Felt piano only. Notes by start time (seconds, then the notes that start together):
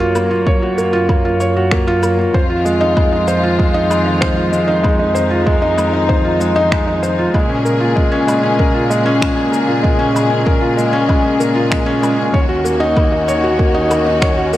Already playing: A#3 F#4 C#5
0.00 F4
0.15 A#3
0.31 F4
0.46 C#5
0.62 F#4
0.78 A#3
0.93 F4
1.09 A#3
1.25 F4
1.40 C#5
1.57 F#4
1.72 A#3
1.87 F4
2.03 A#3
2.19 F4
2.34 C5
2.50 F4
2.65 G#3
2.81 D#4
2.96 G#3
3.12 D#4
3.28 C5
3.43 F4
3.59 G#3
3.74 D#4
3.90 G#3
4.06 D#4
4.21 C5
4.37 F4
4.52 G#3
4.68 D#4
4.83 G#3
4.99 D#4
5.15 C5
5.30 F4
5.46 G#3
5.62 D#4
5.77 G#3
5.93 D#4
6.09 C5
6.25 F4
6.40 G#3
6.56 D#4
6.71 G#3
6.87 D#4
7.03 C5
7.19 F4
7.34 G#3
7.49 C#4
7.65 A#4
7.80 F4
7.96 G#3
8.12 C#4
8.27 G#3
8.43 C#4
8.59 A#4
8.74 F4
8.90 G#3
9.06 C#4
9.21 G#3
9.36 C#4
9.52 A#4
9.68 F4
9.83 G#3
9.99 C#4
10.15 G#3
10.30 C#4
10.46 A#4
10.61 F4
10.77 G#3
10.93 C#4
11.09 G#3
11.24 C#4
11.40 A#4
11.55 F4
11.71 G#3
11.86 C#4
12.02 G#3
12.18 C#4
12.34 C#5
12.49 F#4
12.64 A#3
12.80 D#4
12.96 A#3
13.12 D#4
13.28 C#5
13.44 F#4
13.59 A#3
13.74 D#4
13.90 A#3
14.06 D#4
14.22 C#5
14.38 F#4
14.53 A#3